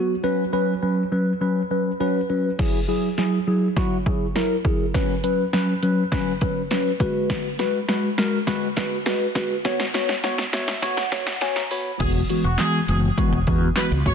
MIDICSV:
0, 0, Header, 1, 5, 480
1, 0, Start_track
1, 0, Tempo, 588235
1, 195, Time_signature, 4, 2, 24, 8
1, 11542, End_track
2, 0, Start_track
2, 0, Title_t, "Horn section"
2, 0, Program_c, 0, 61
2, 9795, Note_on_c, 0, 68, 96
2, 9875, Note_off_c, 0, 68, 0
2, 10155, Note_on_c, 0, 66, 71
2, 10236, Note_off_c, 0, 66, 0
2, 10276, Note_on_c, 0, 68, 94
2, 10436, Note_off_c, 0, 68, 0
2, 10517, Note_on_c, 0, 68, 76
2, 10597, Note_off_c, 0, 68, 0
2, 11236, Note_on_c, 0, 71, 88
2, 11316, Note_off_c, 0, 71, 0
2, 11477, Note_on_c, 0, 73, 89
2, 11542, Note_off_c, 0, 73, 0
2, 11542, End_track
3, 0, Start_track
3, 0, Title_t, "Tine electric piano"
3, 0, Program_c, 1, 4
3, 0, Note_on_c, 1, 54, 81
3, 0, Note_on_c, 1, 59, 76
3, 0, Note_on_c, 1, 66, 91
3, 113, Note_off_c, 1, 54, 0
3, 114, Note_off_c, 1, 59, 0
3, 115, Note_off_c, 1, 66, 0
3, 190, Note_on_c, 1, 54, 109
3, 192, Note_on_c, 1, 61, 98
3, 194, Note_on_c, 1, 71, 122
3, 352, Note_off_c, 1, 54, 0
3, 354, Note_off_c, 1, 61, 0
3, 354, Note_off_c, 1, 71, 0
3, 430, Note_on_c, 1, 54, 105
3, 432, Note_on_c, 1, 61, 96
3, 434, Note_on_c, 1, 71, 121
3, 592, Note_off_c, 1, 54, 0
3, 593, Note_off_c, 1, 61, 0
3, 594, Note_off_c, 1, 71, 0
3, 672, Note_on_c, 1, 54, 84
3, 673, Note_on_c, 1, 61, 79
3, 675, Note_on_c, 1, 71, 93
3, 833, Note_off_c, 1, 54, 0
3, 834, Note_off_c, 1, 61, 0
3, 835, Note_off_c, 1, 71, 0
3, 912, Note_on_c, 1, 54, 83
3, 914, Note_on_c, 1, 61, 72
3, 916, Note_on_c, 1, 71, 90
3, 1073, Note_off_c, 1, 54, 0
3, 1074, Note_off_c, 1, 61, 0
3, 1075, Note_off_c, 1, 71, 0
3, 1151, Note_on_c, 1, 54, 90
3, 1152, Note_on_c, 1, 61, 76
3, 1155, Note_on_c, 1, 71, 97
3, 1313, Note_off_c, 1, 54, 0
3, 1313, Note_off_c, 1, 61, 0
3, 1315, Note_off_c, 1, 71, 0
3, 1392, Note_on_c, 1, 54, 78
3, 1395, Note_on_c, 1, 61, 74
3, 1397, Note_on_c, 1, 71, 85
3, 1554, Note_off_c, 1, 54, 0
3, 1555, Note_off_c, 1, 61, 0
3, 1556, Note_off_c, 1, 71, 0
3, 1633, Note_on_c, 1, 54, 108
3, 1635, Note_on_c, 1, 61, 93
3, 1637, Note_on_c, 1, 71, 120
3, 1794, Note_off_c, 1, 54, 0
3, 1795, Note_off_c, 1, 61, 0
3, 1796, Note_off_c, 1, 71, 0
3, 1871, Note_on_c, 1, 54, 84
3, 1873, Note_on_c, 1, 61, 74
3, 1875, Note_on_c, 1, 71, 87
3, 2033, Note_off_c, 1, 54, 0
3, 2034, Note_off_c, 1, 61, 0
3, 2035, Note_off_c, 1, 71, 0
3, 2113, Note_on_c, 1, 54, 105
3, 2115, Note_on_c, 1, 64, 96
3, 2117, Note_on_c, 1, 68, 120
3, 2274, Note_off_c, 1, 54, 0
3, 2275, Note_off_c, 1, 64, 0
3, 2276, Note_off_c, 1, 68, 0
3, 2352, Note_on_c, 1, 54, 82
3, 2354, Note_on_c, 1, 64, 74
3, 2355, Note_on_c, 1, 68, 92
3, 2513, Note_off_c, 1, 54, 0
3, 2514, Note_off_c, 1, 64, 0
3, 2515, Note_off_c, 1, 68, 0
3, 2592, Note_on_c, 1, 54, 84
3, 2594, Note_on_c, 1, 64, 77
3, 2597, Note_on_c, 1, 68, 91
3, 2753, Note_off_c, 1, 54, 0
3, 2754, Note_off_c, 1, 64, 0
3, 2756, Note_off_c, 1, 68, 0
3, 2833, Note_on_c, 1, 54, 84
3, 2835, Note_on_c, 1, 64, 75
3, 2837, Note_on_c, 1, 68, 93
3, 2994, Note_off_c, 1, 54, 0
3, 2995, Note_off_c, 1, 64, 0
3, 2996, Note_off_c, 1, 68, 0
3, 3073, Note_on_c, 1, 54, 111
3, 3075, Note_on_c, 1, 64, 103
3, 3078, Note_on_c, 1, 66, 124
3, 3234, Note_off_c, 1, 54, 0
3, 3235, Note_off_c, 1, 64, 0
3, 3236, Note_off_c, 1, 66, 0
3, 3312, Note_on_c, 1, 54, 83
3, 3314, Note_on_c, 1, 64, 77
3, 3316, Note_on_c, 1, 68, 87
3, 3474, Note_off_c, 1, 54, 0
3, 3475, Note_off_c, 1, 64, 0
3, 3476, Note_off_c, 1, 68, 0
3, 3553, Note_on_c, 1, 54, 84
3, 3555, Note_on_c, 1, 64, 82
3, 3557, Note_on_c, 1, 70, 98
3, 3714, Note_off_c, 1, 54, 0
3, 3715, Note_off_c, 1, 64, 0
3, 3716, Note_off_c, 1, 70, 0
3, 3792, Note_on_c, 1, 54, 86
3, 3794, Note_on_c, 1, 64, 75
3, 3795, Note_on_c, 1, 68, 92
3, 3953, Note_off_c, 1, 54, 0
3, 3955, Note_off_c, 1, 64, 0
3, 3955, Note_off_c, 1, 68, 0
3, 4031, Note_on_c, 1, 54, 112
3, 4033, Note_on_c, 1, 61, 102
3, 4035, Note_on_c, 1, 71, 116
3, 4193, Note_off_c, 1, 54, 0
3, 4194, Note_off_c, 1, 61, 0
3, 4195, Note_off_c, 1, 71, 0
3, 4271, Note_on_c, 1, 54, 82
3, 4273, Note_on_c, 1, 61, 75
3, 4275, Note_on_c, 1, 71, 92
3, 4433, Note_off_c, 1, 54, 0
3, 4434, Note_off_c, 1, 61, 0
3, 4435, Note_off_c, 1, 71, 0
3, 4512, Note_on_c, 1, 54, 88
3, 4514, Note_on_c, 1, 61, 79
3, 4516, Note_on_c, 1, 71, 100
3, 4673, Note_off_c, 1, 54, 0
3, 4675, Note_off_c, 1, 61, 0
3, 4675, Note_off_c, 1, 71, 0
3, 4754, Note_on_c, 1, 54, 86
3, 4756, Note_on_c, 1, 61, 79
3, 4758, Note_on_c, 1, 71, 93
3, 4914, Note_off_c, 1, 54, 0
3, 4915, Note_off_c, 1, 61, 0
3, 4916, Note_off_c, 1, 71, 0
3, 4993, Note_on_c, 1, 54, 115
3, 4996, Note_on_c, 1, 61, 110
3, 4998, Note_on_c, 1, 71, 127
3, 5154, Note_off_c, 1, 54, 0
3, 5155, Note_off_c, 1, 61, 0
3, 5156, Note_off_c, 1, 71, 0
3, 5233, Note_on_c, 1, 54, 87
3, 5235, Note_on_c, 1, 61, 77
3, 5236, Note_on_c, 1, 71, 95
3, 5394, Note_off_c, 1, 54, 0
3, 5395, Note_off_c, 1, 61, 0
3, 5396, Note_off_c, 1, 71, 0
3, 5473, Note_on_c, 1, 54, 88
3, 5476, Note_on_c, 1, 61, 78
3, 5477, Note_on_c, 1, 71, 99
3, 5634, Note_off_c, 1, 54, 0
3, 5635, Note_off_c, 1, 61, 0
3, 5636, Note_off_c, 1, 71, 0
3, 5712, Note_on_c, 1, 56, 94
3, 5714, Note_on_c, 1, 66, 83
3, 5716, Note_on_c, 1, 71, 100
3, 6098, Note_off_c, 1, 56, 0
3, 6098, Note_off_c, 1, 66, 0
3, 6100, Note_off_c, 1, 71, 0
3, 6193, Note_on_c, 1, 56, 84
3, 6195, Note_on_c, 1, 66, 77
3, 6197, Note_on_c, 1, 71, 97
3, 6354, Note_off_c, 1, 56, 0
3, 6355, Note_off_c, 1, 66, 0
3, 6356, Note_off_c, 1, 71, 0
3, 6434, Note_on_c, 1, 56, 88
3, 6436, Note_on_c, 1, 66, 81
3, 6437, Note_on_c, 1, 71, 101
3, 6594, Note_off_c, 1, 56, 0
3, 6595, Note_off_c, 1, 66, 0
3, 6596, Note_off_c, 1, 71, 0
3, 6674, Note_on_c, 1, 56, 83
3, 6676, Note_on_c, 1, 66, 80
3, 6678, Note_on_c, 1, 70, 101
3, 6834, Note_off_c, 1, 56, 0
3, 6835, Note_off_c, 1, 66, 0
3, 6836, Note_off_c, 1, 70, 0
3, 6913, Note_on_c, 1, 56, 118
3, 6915, Note_on_c, 1, 66, 108
3, 6917, Note_on_c, 1, 71, 127
3, 7074, Note_off_c, 1, 56, 0
3, 7075, Note_off_c, 1, 66, 0
3, 7076, Note_off_c, 1, 71, 0
3, 7154, Note_on_c, 1, 56, 88
3, 7155, Note_on_c, 1, 66, 80
3, 7158, Note_on_c, 1, 71, 92
3, 7314, Note_off_c, 1, 56, 0
3, 7315, Note_off_c, 1, 66, 0
3, 7316, Note_off_c, 1, 71, 0
3, 7393, Note_on_c, 1, 56, 89
3, 7395, Note_on_c, 1, 66, 80
3, 7398, Note_on_c, 1, 71, 99
3, 7554, Note_off_c, 1, 56, 0
3, 7555, Note_off_c, 1, 66, 0
3, 7556, Note_off_c, 1, 71, 0
3, 7631, Note_on_c, 1, 56, 90
3, 7633, Note_on_c, 1, 66, 82
3, 7635, Note_on_c, 1, 71, 100
3, 7793, Note_off_c, 1, 56, 0
3, 7794, Note_off_c, 1, 66, 0
3, 7795, Note_off_c, 1, 71, 0
3, 7872, Note_on_c, 1, 59, 120
3, 7874, Note_on_c, 1, 66, 101
3, 7876, Note_on_c, 1, 73, 127
3, 8033, Note_off_c, 1, 59, 0
3, 8034, Note_off_c, 1, 66, 0
3, 8035, Note_off_c, 1, 73, 0
3, 8111, Note_on_c, 1, 59, 89
3, 8114, Note_on_c, 1, 66, 84
3, 8116, Note_on_c, 1, 73, 97
3, 8273, Note_off_c, 1, 59, 0
3, 8274, Note_off_c, 1, 66, 0
3, 8275, Note_off_c, 1, 73, 0
3, 8352, Note_on_c, 1, 59, 95
3, 8354, Note_on_c, 1, 66, 87
3, 8356, Note_on_c, 1, 73, 97
3, 8513, Note_off_c, 1, 59, 0
3, 8514, Note_off_c, 1, 66, 0
3, 8515, Note_off_c, 1, 73, 0
3, 8591, Note_on_c, 1, 59, 90
3, 8593, Note_on_c, 1, 76, 74
3, 8594, Note_on_c, 1, 66, 82
3, 8596, Note_on_c, 1, 73, 99
3, 8753, Note_off_c, 1, 59, 0
3, 8754, Note_off_c, 1, 66, 0
3, 8755, Note_off_c, 1, 73, 0
3, 8817, Note_off_c, 1, 76, 0
3, 8832, Note_on_c, 1, 59, 117
3, 8834, Note_on_c, 1, 78, 84
3, 8835, Note_on_c, 1, 66, 110
3, 8837, Note_on_c, 1, 73, 127
3, 8994, Note_off_c, 1, 59, 0
3, 8995, Note_off_c, 1, 66, 0
3, 8996, Note_off_c, 1, 73, 0
3, 9072, Note_on_c, 1, 59, 88
3, 9074, Note_on_c, 1, 66, 82
3, 9076, Note_on_c, 1, 73, 94
3, 9233, Note_off_c, 1, 59, 0
3, 9234, Note_off_c, 1, 66, 0
3, 9235, Note_off_c, 1, 73, 0
3, 9282, Note_off_c, 1, 78, 0
3, 9313, Note_on_c, 1, 59, 90
3, 9315, Note_on_c, 1, 80, 82
3, 9316, Note_on_c, 1, 66, 84
3, 9318, Note_on_c, 1, 73, 104
3, 9427, Note_off_c, 1, 80, 0
3, 9437, Note_on_c, 1, 82, 74
3, 9474, Note_off_c, 1, 59, 0
3, 9475, Note_off_c, 1, 66, 0
3, 9476, Note_off_c, 1, 73, 0
3, 9547, Note_off_c, 1, 82, 0
3, 9554, Note_on_c, 1, 59, 94
3, 9555, Note_on_c, 1, 66, 84
3, 9556, Note_on_c, 1, 83, 76
3, 9557, Note_on_c, 1, 73, 104
3, 9714, Note_off_c, 1, 59, 0
3, 9715, Note_off_c, 1, 66, 0
3, 9716, Note_off_c, 1, 73, 0
3, 9779, Note_off_c, 1, 83, 0
3, 9794, Note_on_c, 1, 52, 99
3, 9796, Note_on_c, 1, 56, 92
3, 9797, Note_on_c, 1, 59, 95
3, 9797, Note_on_c, 1, 66, 116
3, 9954, Note_off_c, 1, 52, 0
3, 9955, Note_off_c, 1, 56, 0
3, 9956, Note_off_c, 1, 59, 0
3, 9956, Note_off_c, 1, 66, 0
3, 10034, Note_on_c, 1, 52, 78
3, 10035, Note_on_c, 1, 56, 68
3, 10036, Note_on_c, 1, 59, 71
3, 10038, Note_on_c, 1, 66, 88
3, 10194, Note_off_c, 1, 52, 0
3, 10195, Note_off_c, 1, 56, 0
3, 10196, Note_off_c, 1, 59, 0
3, 10196, Note_off_c, 1, 66, 0
3, 10274, Note_on_c, 1, 52, 80
3, 10275, Note_on_c, 1, 56, 71
3, 10276, Note_on_c, 1, 59, 71
3, 10277, Note_on_c, 1, 66, 91
3, 10434, Note_off_c, 1, 52, 0
3, 10435, Note_off_c, 1, 56, 0
3, 10435, Note_off_c, 1, 59, 0
3, 10436, Note_off_c, 1, 66, 0
3, 10513, Note_on_c, 1, 52, 77
3, 10515, Note_on_c, 1, 56, 72
3, 10516, Note_on_c, 1, 59, 68
3, 10517, Note_on_c, 1, 66, 84
3, 10674, Note_off_c, 1, 52, 0
3, 10675, Note_off_c, 1, 56, 0
3, 10675, Note_off_c, 1, 59, 0
3, 10676, Note_off_c, 1, 66, 0
3, 10753, Note_on_c, 1, 52, 127
3, 10755, Note_on_c, 1, 56, 112
3, 10757, Note_on_c, 1, 59, 115
3, 10758, Note_on_c, 1, 66, 127
3, 10914, Note_off_c, 1, 52, 0
3, 10915, Note_off_c, 1, 56, 0
3, 10916, Note_off_c, 1, 59, 0
3, 10916, Note_off_c, 1, 66, 0
3, 10993, Note_on_c, 1, 52, 91
3, 10994, Note_on_c, 1, 56, 84
3, 10996, Note_on_c, 1, 59, 85
3, 10997, Note_on_c, 1, 66, 103
3, 11154, Note_off_c, 1, 52, 0
3, 11154, Note_off_c, 1, 56, 0
3, 11155, Note_off_c, 1, 59, 0
3, 11156, Note_off_c, 1, 66, 0
3, 11234, Note_on_c, 1, 52, 80
3, 11235, Note_on_c, 1, 56, 76
3, 11236, Note_on_c, 1, 59, 74
3, 11238, Note_on_c, 1, 66, 85
3, 11394, Note_off_c, 1, 52, 0
3, 11395, Note_off_c, 1, 56, 0
3, 11396, Note_off_c, 1, 59, 0
3, 11396, Note_off_c, 1, 66, 0
3, 11473, Note_on_c, 1, 52, 78
3, 11475, Note_on_c, 1, 56, 75
3, 11475, Note_on_c, 1, 59, 71
3, 11477, Note_on_c, 1, 66, 88
3, 11542, Note_off_c, 1, 52, 0
3, 11542, Note_off_c, 1, 56, 0
3, 11542, Note_off_c, 1, 59, 0
3, 11542, Note_off_c, 1, 66, 0
3, 11542, End_track
4, 0, Start_track
4, 0, Title_t, "Fretless electric bass"
4, 0, Program_c, 2, 35
4, 9794, Note_on_c, 2, 28, 110
4, 9961, Note_off_c, 2, 28, 0
4, 10153, Note_on_c, 2, 28, 99
4, 10237, Note_off_c, 2, 28, 0
4, 10514, Note_on_c, 2, 30, 96
4, 10681, Note_off_c, 2, 30, 0
4, 10873, Note_on_c, 2, 28, 102
4, 10957, Note_off_c, 2, 28, 0
4, 10994, Note_on_c, 2, 40, 99
4, 11161, Note_off_c, 2, 40, 0
4, 11354, Note_on_c, 2, 37, 96
4, 11438, Note_off_c, 2, 37, 0
4, 11472, Note_on_c, 2, 32, 95
4, 11542, Note_off_c, 2, 32, 0
4, 11542, End_track
5, 0, Start_track
5, 0, Title_t, "Drums"
5, 2114, Note_on_c, 9, 38, 52
5, 2114, Note_on_c, 9, 49, 99
5, 2115, Note_on_c, 9, 36, 109
5, 2196, Note_off_c, 9, 36, 0
5, 2196, Note_off_c, 9, 38, 0
5, 2196, Note_off_c, 9, 49, 0
5, 2594, Note_on_c, 9, 38, 56
5, 2676, Note_off_c, 9, 38, 0
5, 3073, Note_on_c, 9, 36, 94
5, 3074, Note_on_c, 9, 38, 57
5, 3154, Note_off_c, 9, 36, 0
5, 3156, Note_off_c, 9, 38, 0
5, 3315, Note_on_c, 9, 36, 91
5, 3396, Note_off_c, 9, 36, 0
5, 3555, Note_on_c, 9, 38, 65
5, 3636, Note_off_c, 9, 38, 0
5, 3792, Note_on_c, 9, 36, 102
5, 3874, Note_off_c, 9, 36, 0
5, 4034, Note_on_c, 9, 38, 72
5, 4034, Note_on_c, 9, 42, 98
5, 4035, Note_on_c, 9, 36, 115
5, 4116, Note_off_c, 9, 36, 0
5, 4116, Note_off_c, 9, 38, 0
5, 4116, Note_off_c, 9, 42, 0
5, 4274, Note_on_c, 9, 42, 86
5, 4356, Note_off_c, 9, 42, 0
5, 4514, Note_on_c, 9, 38, 71
5, 4516, Note_on_c, 9, 42, 83
5, 4596, Note_off_c, 9, 38, 0
5, 4598, Note_off_c, 9, 42, 0
5, 4754, Note_on_c, 9, 42, 81
5, 4835, Note_off_c, 9, 42, 0
5, 4993, Note_on_c, 9, 36, 94
5, 4994, Note_on_c, 9, 38, 72
5, 4997, Note_on_c, 9, 42, 96
5, 5074, Note_off_c, 9, 36, 0
5, 5076, Note_off_c, 9, 38, 0
5, 5078, Note_off_c, 9, 42, 0
5, 5233, Note_on_c, 9, 42, 78
5, 5235, Note_on_c, 9, 36, 103
5, 5314, Note_off_c, 9, 42, 0
5, 5316, Note_off_c, 9, 36, 0
5, 5473, Note_on_c, 9, 42, 77
5, 5475, Note_on_c, 9, 38, 81
5, 5555, Note_off_c, 9, 42, 0
5, 5557, Note_off_c, 9, 38, 0
5, 5712, Note_on_c, 9, 36, 106
5, 5716, Note_on_c, 9, 42, 65
5, 5794, Note_off_c, 9, 36, 0
5, 5798, Note_off_c, 9, 42, 0
5, 5955, Note_on_c, 9, 36, 115
5, 5955, Note_on_c, 9, 38, 90
5, 5955, Note_on_c, 9, 42, 98
5, 6036, Note_off_c, 9, 36, 0
5, 6036, Note_off_c, 9, 42, 0
5, 6037, Note_off_c, 9, 38, 0
5, 6195, Note_on_c, 9, 38, 84
5, 6195, Note_on_c, 9, 42, 85
5, 6276, Note_off_c, 9, 38, 0
5, 6276, Note_off_c, 9, 42, 0
5, 6434, Note_on_c, 9, 38, 84
5, 6436, Note_on_c, 9, 42, 91
5, 6516, Note_off_c, 9, 38, 0
5, 6518, Note_off_c, 9, 42, 0
5, 6674, Note_on_c, 9, 38, 94
5, 6674, Note_on_c, 9, 42, 80
5, 6756, Note_off_c, 9, 38, 0
5, 6756, Note_off_c, 9, 42, 0
5, 6913, Note_on_c, 9, 36, 99
5, 6914, Note_on_c, 9, 38, 94
5, 6917, Note_on_c, 9, 42, 95
5, 6994, Note_off_c, 9, 36, 0
5, 6996, Note_off_c, 9, 38, 0
5, 6998, Note_off_c, 9, 42, 0
5, 7152, Note_on_c, 9, 42, 80
5, 7154, Note_on_c, 9, 36, 98
5, 7154, Note_on_c, 9, 38, 98
5, 7234, Note_off_c, 9, 42, 0
5, 7236, Note_off_c, 9, 36, 0
5, 7236, Note_off_c, 9, 38, 0
5, 7391, Note_on_c, 9, 42, 79
5, 7394, Note_on_c, 9, 38, 96
5, 7473, Note_off_c, 9, 42, 0
5, 7475, Note_off_c, 9, 38, 0
5, 7632, Note_on_c, 9, 36, 111
5, 7634, Note_on_c, 9, 38, 103
5, 7634, Note_on_c, 9, 42, 65
5, 7713, Note_off_c, 9, 36, 0
5, 7715, Note_off_c, 9, 38, 0
5, 7716, Note_off_c, 9, 42, 0
5, 7873, Note_on_c, 9, 38, 107
5, 7873, Note_on_c, 9, 42, 99
5, 7874, Note_on_c, 9, 36, 116
5, 7955, Note_off_c, 9, 38, 0
5, 7955, Note_off_c, 9, 42, 0
5, 7956, Note_off_c, 9, 36, 0
5, 7994, Note_on_c, 9, 38, 107
5, 8075, Note_off_c, 9, 38, 0
5, 8113, Note_on_c, 9, 38, 108
5, 8113, Note_on_c, 9, 42, 90
5, 8195, Note_off_c, 9, 38, 0
5, 8195, Note_off_c, 9, 42, 0
5, 8234, Note_on_c, 9, 38, 104
5, 8315, Note_off_c, 9, 38, 0
5, 8354, Note_on_c, 9, 38, 105
5, 8355, Note_on_c, 9, 42, 91
5, 8435, Note_off_c, 9, 38, 0
5, 8437, Note_off_c, 9, 42, 0
5, 8473, Note_on_c, 9, 38, 111
5, 8555, Note_off_c, 9, 38, 0
5, 8593, Note_on_c, 9, 42, 86
5, 8594, Note_on_c, 9, 38, 113
5, 8675, Note_off_c, 9, 38, 0
5, 8675, Note_off_c, 9, 42, 0
5, 8714, Note_on_c, 9, 38, 113
5, 8796, Note_off_c, 9, 38, 0
5, 8832, Note_on_c, 9, 36, 100
5, 8833, Note_on_c, 9, 38, 110
5, 8836, Note_on_c, 9, 42, 98
5, 8914, Note_off_c, 9, 36, 0
5, 8915, Note_off_c, 9, 38, 0
5, 8917, Note_off_c, 9, 42, 0
5, 8954, Note_on_c, 9, 38, 109
5, 9035, Note_off_c, 9, 38, 0
5, 9071, Note_on_c, 9, 42, 81
5, 9073, Note_on_c, 9, 38, 111
5, 9074, Note_on_c, 9, 36, 102
5, 9153, Note_off_c, 9, 42, 0
5, 9155, Note_off_c, 9, 38, 0
5, 9156, Note_off_c, 9, 36, 0
5, 9193, Note_on_c, 9, 38, 115
5, 9275, Note_off_c, 9, 38, 0
5, 9311, Note_on_c, 9, 42, 82
5, 9313, Note_on_c, 9, 38, 121
5, 9393, Note_off_c, 9, 42, 0
5, 9395, Note_off_c, 9, 38, 0
5, 9433, Note_on_c, 9, 38, 120
5, 9515, Note_off_c, 9, 38, 0
5, 9554, Note_on_c, 9, 46, 68
5, 9636, Note_off_c, 9, 46, 0
5, 9792, Note_on_c, 9, 42, 102
5, 9792, Note_on_c, 9, 49, 110
5, 9794, Note_on_c, 9, 36, 114
5, 9874, Note_off_c, 9, 42, 0
5, 9874, Note_off_c, 9, 49, 0
5, 9875, Note_off_c, 9, 36, 0
5, 10033, Note_on_c, 9, 42, 91
5, 10114, Note_off_c, 9, 42, 0
5, 10265, Note_on_c, 9, 38, 89
5, 10272, Note_on_c, 9, 39, 111
5, 10275, Note_on_c, 9, 42, 90
5, 10346, Note_off_c, 9, 38, 0
5, 10354, Note_off_c, 9, 39, 0
5, 10356, Note_off_c, 9, 42, 0
5, 10513, Note_on_c, 9, 42, 81
5, 10595, Note_off_c, 9, 42, 0
5, 10752, Note_on_c, 9, 36, 99
5, 10756, Note_on_c, 9, 42, 94
5, 10834, Note_off_c, 9, 36, 0
5, 10837, Note_off_c, 9, 42, 0
5, 10991, Note_on_c, 9, 42, 81
5, 10994, Note_on_c, 9, 36, 99
5, 11073, Note_off_c, 9, 42, 0
5, 11076, Note_off_c, 9, 36, 0
5, 11225, Note_on_c, 9, 38, 101
5, 11231, Note_on_c, 9, 42, 83
5, 11233, Note_on_c, 9, 39, 123
5, 11307, Note_off_c, 9, 38, 0
5, 11313, Note_off_c, 9, 42, 0
5, 11314, Note_off_c, 9, 39, 0
5, 11472, Note_on_c, 9, 36, 117
5, 11475, Note_on_c, 9, 42, 68
5, 11542, Note_off_c, 9, 36, 0
5, 11542, Note_off_c, 9, 42, 0
5, 11542, End_track
0, 0, End_of_file